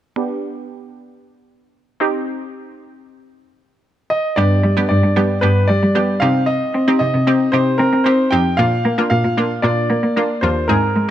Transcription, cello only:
0, 0, Header, 1, 2, 480
1, 0, Start_track
1, 0, Key_signature, -3, "minor"
1, 0, Tempo, 526316
1, 151, Time_signature, 4, 2, 24, 8
1, 10126, End_track
2, 0, Start_track
2, 0, Title_t, "Cello"
2, 0, Program_c, 0, 42
2, 3991, Note_on_c, 0, 43, 96
2, 4147, Note_off_c, 0, 43, 0
2, 4230, Note_on_c, 0, 55, 91
2, 4309, Note_off_c, 0, 55, 0
2, 4351, Note_on_c, 0, 55, 88
2, 4429, Note_off_c, 0, 55, 0
2, 4472, Note_on_c, 0, 43, 91
2, 4550, Note_off_c, 0, 43, 0
2, 4593, Note_on_c, 0, 43, 85
2, 4670, Note_off_c, 0, 43, 0
2, 4713, Note_on_c, 0, 55, 93
2, 4868, Note_off_c, 0, 55, 0
2, 4952, Note_on_c, 0, 43, 96
2, 5108, Note_off_c, 0, 43, 0
2, 5192, Note_on_c, 0, 55, 92
2, 5270, Note_off_c, 0, 55, 0
2, 5313, Note_on_c, 0, 55, 94
2, 5390, Note_off_c, 0, 55, 0
2, 5433, Note_on_c, 0, 55, 99
2, 5588, Note_off_c, 0, 55, 0
2, 5672, Note_on_c, 0, 48, 97
2, 5984, Note_off_c, 0, 48, 0
2, 6153, Note_on_c, 0, 60, 90
2, 6230, Note_off_c, 0, 60, 0
2, 6272, Note_on_c, 0, 60, 97
2, 6350, Note_off_c, 0, 60, 0
2, 6391, Note_on_c, 0, 48, 96
2, 6469, Note_off_c, 0, 48, 0
2, 6511, Note_on_c, 0, 48, 89
2, 6589, Note_off_c, 0, 48, 0
2, 6632, Note_on_c, 0, 60, 98
2, 6787, Note_off_c, 0, 60, 0
2, 6871, Note_on_c, 0, 48, 92
2, 7027, Note_off_c, 0, 48, 0
2, 7112, Note_on_c, 0, 60, 104
2, 7189, Note_off_c, 0, 60, 0
2, 7231, Note_on_c, 0, 60, 98
2, 7309, Note_off_c, 0, 60, 0
2, 7351, Note_on_c, 0, 60, 91
2, 7507, Note_off_c, 0, 60, 0
2, 7592, Note_on_c, 0, 41, 92
2, 7747, Note_off_c, 0, 41, 0
2, 7831, Note_on_c, 0, 46, 101
2, 7987, Note_off_c, 0, 46, 0
2, 8072, Note_on_c, 0, 58, 94
2, 8150, Note_off_c, 0, 58, 0
2, 8191, Note_on_c, 0, 58, 99
2, 8269, Note_off_c, 0, 58, 0
2, 8312, Note_on_c, 0, 46, 104
2, 8390, Note_off_c, 0, 46, 0
2, 8431, Note_on_c, 0, 46, 86
2, 8509, Note_off_c, 0, 46, 0
2, 8550, Note_on_c, 0, 58, 90
2, 8706, Note_off_c, 0, 58, 0
2, 8789, Note_on_c, 0, 46, 107
2, 8946, Note_off_c, 0, 46, 0
2, 9030, Note_on_c, 0, 58, 101
2, 9109, Note_off_c, 0, 58, 0
2, 9150, Note_on_c, 0, 58, 93
2, 9228, Note_off_c, 0, 58, 0
2, 9272, Note_on_c, 0, 58, 96
2, 9428, Note_off_c, 0, 58, 0
2, 9511, Note_on_c, 0, 39, 94
2, 9667, Note_off_c, 0, 39, 0
2, 9753, Note_on_c, 0, 44, 95
2, 9908, Note_off_c, 0, 44, 0
2, 9992, Note_on_c, 0, 56, 87
2, 10070, Note_off_c, 0, 56, 0
2, 10126, End_track
0, 0, End_of_file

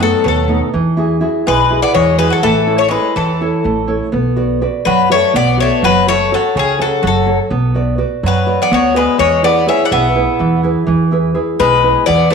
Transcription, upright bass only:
0, 0, Header, 1, 2, 480
1, 0, Start_track
1, 0, Tempo, 482315
1, 738, Time_signature, 7, 3, 24, 8
1, 12285, End_track
2, 0, Start_track
2, 0, Title_t, "Upright bass"
2, 0, Program_c, 0, 32
2, 0, Note_on_c, 0, 42, 79
2, 112, Note_off_c, 0, 42, 0
2, 259, Note_on_c, 0, 39, 95
2, 596, Note_off_c, 0, 39, 0
2, 737, Note_on_c, 0, 40, 79
2, 1244, Note_off_c, 0, 40, 0
2, 1470, Note_on_c, 0, 35, 85
2, 1805, Note_off_c, 0, 35, 0
2, 1949, Note_on_c, 0, 40, 93
2, 2285, Note_off_c, 0, 40, 0
2, 2424, Note_on_c, 0, 33, 76
2, 2931, Note_off_c, 0, 33, 0
2, 3146, Note_on_c, 0, 40, 68
2, 3484, Note_off_c, 0, 40, 0
2, 3634, Note_on_c, 0, 33, 87
2, 3970, Note_off_c, 0, 33, 0
2, 4114, Note_on_c, 0, 35, 77
2, 4619, Note_off_c, 0, 35, 0
2, 4840, Note_on_c, 0, 42, 83
2, 5174, Note_off_c, 0, 42, 0
2, 5324, Note_on_c, 0, 35, 86
2, 5657, Note_off_c, 0, 35, 0
2, 5800, Note_on_c, 0, 30, 79
2, 6303, Note_off_c, 0, 30, 0
2, 6526, Note_on_c, 0, 37, 70
2, 6859, Note_off_c, 0, 37, 0
2, 7004, Note_on_c, 0, 30, 89
2, 7337, Note_off_c, 0, 30, 0
2, 7474, Note_on_c, 0, 35, 93
2, 7978, Note_off_c, 0, 35, 0
2, 8194, Note_on_c, 0, 42, 91
2, 8529, Note_off_c, 0, 42, 0
2, 8675, Note_on_c, 0, 38, 96
2, 9009, Note_off_c, 0, 38, 0
2, 9149, Note_on_c, 0, 40, 75
2, 9652, Note_off_c, 0, 40, 0
2, 9869, Note_on_c, 0, 35, 80
2, 10204, Note_off_c, 0, 35, 0
2, 10353, Note_on_c, 0, 40, 82
2, 10685, Note_off_c, 0, 40, 0
2, 10827, Note_on_c, 0, 40, 83
2, 11328, Note_off_c, 0, 40, 0
2, 11545, Note_on_c, 0, 35, 89
2, 11878, Note_off_c, 0, 35, 0
2, 12030, Note_on_c, 0, 40, 81
2, 12285, Note_off_c, 0, 40, 0
2, 12285, End_track
0, 0, End_of_file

